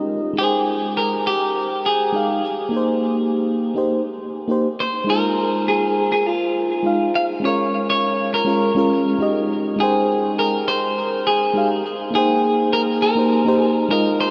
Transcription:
Already playing: fm electric piano G#3 D#4 G4 D#5
0.33 fm electric piano G#3 D#4
0.38 clean electric guitar G#4, fm electric piano C5 G5
0.97 clean electric guitar A#4
1.27 clean electric guitar G4
1.86 clean electric guitar G#4
2.12 fm electric piano G#3 D#4 G4 F5
2.69 fm electric piano A#3 D#4
2.74 fm electric piano G4 C5
3.75 fm electric piano A#3 D#4 G4 C5
4.48 fm electric piano A#3 D#4 G4 C5
4.80 clean electric guitar C5
5.04 fm electric piano G#3 D#4
5.09 fm electric piano F4 C5, clean electric guitar A#4
5.68 clean electric guitar G#4
6.12 clean electric guitar G#4
6.27 clean electric guitar F4
6.83 fm electric piano G#3 D#4 F4 F5
7.15 clean electric guitar F5
7.40 fm electric piano G#3 C#4
7.45 fm electric piano F4 A#4, clean electric guitar C#5
7.90 clean electric guitar C#5
8.34 clean electric guitar A#4
8.45 fm electric piano G#3 C#4 F4 A#4
8.75 fm electric piano G#3 C#4 F4 A#4
9.19 fm electric piano G#3 D#4 G4 D#5
9.76 fm electric piano G#3 D#4
9.80 clean electric guitar G#4, fm electric piano C5 G5
10.39 clean electric guitar A#4
10.68 clean electric guitar C5
11.27 clean electric guitar G#4
11.54 fm electric piano G#3 D#4 G4 F5
12.11 fm electric piano A#3 D#4
12.15 clean electric guitar G#4, fm electric piano C5 G5
12.73 clean electric guitar A#4
13.02 clean electric guitar A#4
13.15 fm electric piano A#3 D#4 G4 C5
13.45 fm electric piano A#3 D#4 G4 C5
13.62 clean electric guitar G#4
13.89 fm electric piano G#3 D#4 F4 D#5, clean electric guitar A#4
14.21 clean electric guitar C5

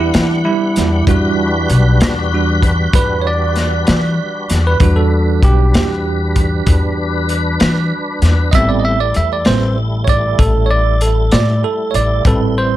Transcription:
Already playing: upright bass E2, tonewheel organ G3 B3 D4 F#5
0.00 tine electric piano E4
0.14 upright bass E3, snare, closed hi-hat
0.45 tine electric piano G3 E4
0.76 upright bass E2, snare, closed hi-hat
1.07 upright bass E2, tine electric piano G3 D4 F#4, tonewheel organ G3 D4 F#4 B4, kick, closed hi-hat
1.69 upright bass B1, closed hi-hat
2.01 upright bass E2, snare, closed hi-hat
2.34 tine electric piano G3 D4 F#4
2.62 kick, closed hi-hat
2.93 upright bass E2, tine electric piano B4, kick, closed hi-hat
3.22 tine electric piano C#5
3.27 tine electric piano D5
3.56 snare, closed hi-hat
3.87 upright bass E3, snare, closed hi-hat
4.49 upright bass E2, snare, closed hi-hat
4.67 tine electric piano B4
4.80 upright bass E2, tine electric piano G3 D4 F#4, tonewheel organ D4 B4, kick, closed hi-hat
4.96 tine electric piano A4
5.42 upright bass B1, tine electric piano G4, kick, closed hi-hat
5.74 upright bass E2, snare, closed hi-hat
6.36 kick, closed hi-hat
6.66 upright bass E2, kick, closed hi-hat
7.29 closed hi-hat
7.60 upright bass E3, snare, closed hi-hat
8.22 upright bass E2, snare, closed hi-hat
8.51 upright bass A1, tine electric piano G3 B3 D#5 E5, tonewheel organ G3 A3, kick, closed hi-hat
8.56 tine electric piano C4, tonewheel organ E4
8.69 tine electric piano D5
8.80 tine electric piano D#5
8.85 tine electric piano E5
9.00 tine electric piano D5
9.14 upright bass E2, tine electric piano E5, closed hi-hat
9.33 tine electric piano D5
9.45 upright bass A1, tine electric piano G3 C4 B4 C5, snare, closed hi-hat
10.04 tine electric piano C#5, kick, closed hi-hat
10.09 tine electric piano D5
10.39 upright bass A1, tine electric piano A4, kick, closed hi-hat
10.66 tine electric piano C#5
10.71 tine electric piano D5
11.01 tine electric piano A4, closed hi-hat
11.31 upright bass A2, tine electric piano D5, snare, closed hi-hat
11.64 tine electric piano A4
11.91 upright bass A1, tine electric piano C#5, closed hi-hat
11.95 tine electric piano D5
12.25 upright bass A1, tine electric piano G3 C4 A4 B4, tonewheel organ G3 E4, kick, closed hi-hat
12.58 tine electric piano C5

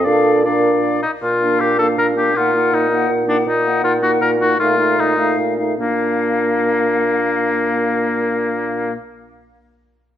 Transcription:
0.04 bassoon A#2, clarinet D4, french horn A4, oboe D5, flute F5
0.44 clarinet D4, french horn A#4, oboe D5, flute F5
1.03 oboe D#4
1.22 bassoon A#2, oboe F4
1.40 french horn A#3, clarinet D4, flute F5
1.60 bassoon A#2, oboe G4
1.79 french horn A#3, clarinet D4, oboe A4, flute F5
1.98 bassoon A#2, oboe A#4
2.16 french horn A#3, clarinet D4, oboe G4, flute F5
2.33 bassoon A#2, french horn A#3, clarinet D#4, oboe F4, flute F#5
2.54 french horn A#3, clarinet D#4, flute F#5
2.72 bassoon A#2, oboe D#4
2.89 french horn A#3, clarinet D#4, flute F#5
3.09 bassoon A#2
3.27 french horn A#3, oboe D4, clarinet D#4, flute F#5
3.46 bassoon A#2, oboe D#4
3.64 french horn A#3, clarinet D#4, flute F#5
3.83 bassoon A#2, oboe F4
4.01 french horn A#3, clarinet D#4, oboe F#4, flute F#5
4.21 bassoon A#2, oboe A#4
4.40 french horn A#3, clarinet D#4, oboe F#4, flute F#5
4.60 bassoon A#2, french horn A3, clarinet D#4, oboe F4, flute F5
4.78 french horn A3, clarinet D#4, flute F5
4.99 bassoon A#2, oboe D#4
5.17 french horn A3, clarinet D#4, flute F5
5.38 bassoon A#2
5.58 french horn A3, clarinet D#4, flute F5
5.78 bassoon A#2, french horn A#3, oboe A#3, clarinet D4, flute F5

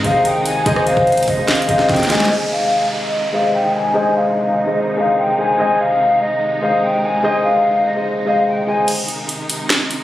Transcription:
Already playing: string section C3 D#3 G#3 D#4, grand piano G#3 G#4 C5 D#5
0.03 808-style bass G#1, grand piano G#3 G#4 C5 D#5, flute F5, kick, closed hi-hat
0.25 flute G5, closed hi-hat
0.46 flute G#5, closed hi-hat
0.65 808-style bass G#1, grand piano G#3 G#4 C5 D#5, soft synth lead C5, flute G#5, kick, closed hi-hat
0.76 cross-stick
0.86 flute F5, closed hi-hat
0.97 808-style bass G#1, kick
1.07 closed hi-hat
1.12 closed hi-hat
1.17 closed hi-hat
1.23 closed hi-hat
1.28 808-style bass G#1, flute D#5, kick, open hi-hat
1.37 grand piano G#3 G#4 C5 D#5
1.48 soft synth lead F5, snare, clap, closed hi-hat
1.55 closed hi-hat
1.62 closed hi-hat
1.68 808-style bass G#1, grand piano G#3 G#4 C5 D#5, soft synth lead D#5, flute F5, kick, closed hi-hat
1.79 snare
1.89 808-style bass G#1, flute G5, kick, snare, closed hi-hat
1.95 snare, closed hi-hat
2.00 snare, closed hi-hat
2.05 snare
2.09 grand piano G#3 G#4 C5 D#5, flute G#5, snare, closed hi-hat
2.15 snare
2.20 snare
2.25 snare
2.30 string section C3 D#3 G#3 D#4, grand piano G#3 G#4 C5 D#5, flute G#5, downlifter
2.51 flute F5
2.92 flute D#5
3.32 grand piano G#3 G#4 C5 D#5, flute F5
3.54 flute G5
3.74 flute G#5
3.94 grand piano G#3 G#4 C5 D#5, flute G#5
4.15 flute F5
4.56 flute D#5
4.66 grand piano G#3 G#4 C5 D#5
4.97 grand piano G#3 G#4 C5 D#5, flute F5
5.17 flute G5
5.38 grand piano G#3 G#4 C5 D#5, flute G#5
5.58 grand piano G#3 G#4 C5 D#5, flute G#5
5.80 flute F5
6.21 flute D#5
6.61 grand piano G#3 G#4 C5 D#5, flute F5
6.83 flute G5
7.03 flute G#5
7.23 grand piano G#3 G#4 C5 D#5, flute G#5
7.44 flute F5
7.85 flute D#5
7.94 grand piano G#3 G#4 C5 D#5
8.25 grand piano G#3 G#4 C5 D#5, flute F5
8.47 flute G5
8.66 grand piano G#3 G#4 C5 D#5, flute G#5
8.88 string section C3 D#3 G#3 D#4, closed hi-hat, crash
9.08 closed hi-hat
9.29 closed hi-hat
9.50 closed hi-hat
9.70 snare, clap, closed hi-hat
9.91 closed hi-hat

